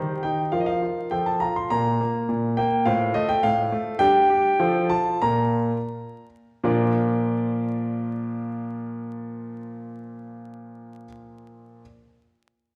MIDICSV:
0, 0, Header, 1, 2, 480
1, 0, Start_track
1, 0, Key_signature, -2, "major"
1, 0, Tempo, 578592
1, 440, Time_signature, 2, 2, 24, 8
1, 3316, Tempo, 612245
1, 4276, Tempo, 677201
1, 4756, Tempo, 729040
1, 5236, Tempo, 739827
1, 9209, End_track
2, 0, Start_track
2, 0, Title_t, "Grand piano"
2, 0, Program_c, 0, 0
2, 0, Note_on_c, 0, 51, 62
2, 0, Note_on_c, 0, 67, 47
2, 0, Note_on_c, 0, 72, 45
2, 0, Note_on_c, 0, 82, 95
2, 190, Note_off_c, 0, 51, 0
2, 190, Note_on_c, 0, 79, 77
2, 194, Note_off_c, 0, 82, 0
2, 201, Note_on_c, 0, 63, 54
2, 338, Note_off_c, 0, 79, 0
2, 407, Note_off_c, 0, 67, 0
2, 407, Note_off_c, 0, 72, 0
2, 431, Note_on_c, 0, 77, 77
2, 435, Note_off_c, 0, 63, 0
2, 436, Note_on_c, 0, 53, 56
2, 438, Note_on_c, 0, 65, 45
2, 439, Note_on_c, 0, 70, 42
2, 494, Note_off_c, 0, 77, 0
2, 500, Note_on_c, 0, 75, 62
2, 550, Note_on_c, 0, 77, 75
2, 559, Note_off_c, 0, 75, 0
2, 668, Note_off_c, 0, 65, 0
2, 675, Note_off_c, 0, 53, 0
2, 681, Note_on_c, 0, 65, 45
2, 894, Note_off_c, 0, 70, 0
2, 915, Note_off_c, 0, 65, 0
2, 919, Note_on_c, 0, 79, 75
2, 923, Note_off_c, 0, 77, 0
2, 925, Note_on_c, 0, 69, 41
2, 926, Note_on_c, 0, 53, 57
2, 927, Note_on_c, 0, 65, 42
2, 1046, Note_off_c, 0, 79, 0
2, 1046, Note_on_c, 0, 81, 69
2, 1157, Note_off_c, 0, 65, 0
2, 1162, Note_on_c, 0, 82, 80
2, 1164, Note_off_c, 0, 53, 0
2, 1170, Note_on_c, 0, 65, 50
2, 1171, Note_off_c, 0, 81, 0
2, 1289, Note_off_c, 0, 82, 0
2, 1296, Note_on_c, 0, 84, 75
2, 1380, Note_off_c, 0, 69, 0
2, 1406, Note_off_c, 0, 65, 0
2, 1413, Note_on_c, 0, 82, 96
2, 1416, Note_off_c, 0, 84, 0
2, 1418, Note_on_c, 0, 65, 46
2, 1420, Note_on_c, 0, 46, 63
2, 1422, Note_on_c, 0, 70, 46
2, 1651, Note_off_c, 0, 46, 0
2, 1665, Note_on_c, 0, 58, 55
2, 1895, Note_off_c, 0, 58, 0
2, 1898, Note_on_c, 0, 46, 59
2, 2130, Note_off_c, 0, 46, 0
2, 2133, Note_on_c, 0, 79, 83
2, 2136, Note_off_c, 0, 82, 0
2, 2144, Note_on_c, 0, 58, 61
2, 2342, Note_off_c, 0, 65, 0
2, 2344, Note_off_c, 0, 70, 0
2, 2348, Note_off_c, 0, 79, 0
2, 2368, Note_on_c, 0, 77, 90
2, 2370, Note_off_c, 0, 58, 0
2, 2373, Note_on_c, 0, 45, 76
2, 2373, Note_on_c, 0, 72, 55
2, 2377, Note_on_c, 0, 65, 55
2, 2602, Note_off_c, 0, 45, 0
2, 2606, Note_on_c, 0, 75, 90
2, 2607, Note_off_c, 0, 77, 0
2, 2612, Note_on_c, 0, 57, 69
2, 2725, Note_off_c, 0, 75, 0
2, 2727, Note_on_c, 0, 79, 93
2, 2839, Note_off_c, 0, 57, 0
2, 2844, Note_off_c, 0, 79, 0
2, 2847, Note_on_c, 0, 77, 98
2, 2852, Note_on_c, 0, 45, 64
2, 3077, Note_off_c, 0, 45, 0
2, 3088, Note_on_c, 0, 57, 64
2, 3284, Note_off_c, 0, 72, 0
2, 3286, Note_off_c, 0, 65, 0
2, 3286, Note_off_c, 0, 77, 0
2, 3310, Note_on_c, 0, 79, 116
2, 3315, Note_off_c, 0, 57, 0
2, 3320, Note_on_c, 0, 62, 64
2, 3321, Note_on_c, 0, 67, 58
2, 3322, Note_on_c, 0, 55, 84
2, 3540, Note_off_c, 0, 67, 0
2, 3541, Note_off_c, 0, 55, 0
2, 3551, Note_on_c, 0, 67, 66
2, 3749, Note_off_c, 0, 62, 0
2, 3775, Note_off_c, 0, 67, 0
2, 3785, Note_on_c, 0, 53, 82
2, 3785, Note_on_c, 0, 65, 59
2, 3787, Note_on_c, 0, 69, 53
2, 3988, Note_off_c, 0, 79, 0
2, 4013, Note_off_c, 0, 65, 0
2, 4019, Note_off_c, 0, 53, 0
2, 4020, Note_on_c, 0, 81, 91
2, 4025, Note_on_c, 0, 65, 61
2, 4250, Note_off_c, 0, 69, 0
2, 4264, Note_off_c, 0, 65, 0
2, 4271, Note_on_c, 0, 82, 97
2, 4276, Note_off_c, 0, 81, 0
2, 4276, Note_on_c, 0, 46, 64
2, 4276, Note_on_c, 0, 65, 56
2, 4277, Note_on_c, 0, 70, 53
2, 4612, Note_off_c, 0, 46, 0
2, 4660, Note_off_c, 0, 65, 0
2, 4661, Note_off_c, 0, 70, 0
2, 4990, Note_off_c, 0, 82, 0
2, 5241, Note_on_c, 0, 46, 76
2, 5242, Note_on_c, 0, 53, 60
2, 5243, Note_on_c, 0, 62, 62
2, 5246, Note_on_c, 0, 65, 68
2, 5248, Note_on_c, 0, 70, 68
2, 5250, Note_on_c, 0, 74, 66
2, 5398, Control_c, 0, 64, 127
2, 8102, Note_off_c, 0, 46, 0
2, 8103, Note_off_c, 0, 53, 0
2, 8103, Note_off_c, 0, 62, 0
2, 8105, Note_off_c, 0, 65, 0
2, 8106, Note_off_c, 0, 70, 0
2, 8107, Note_off_c, 0, 74, 0
2, 8602, Control_c, 0, 64, 0
2, 9209, End_track
0, 0, End_of_file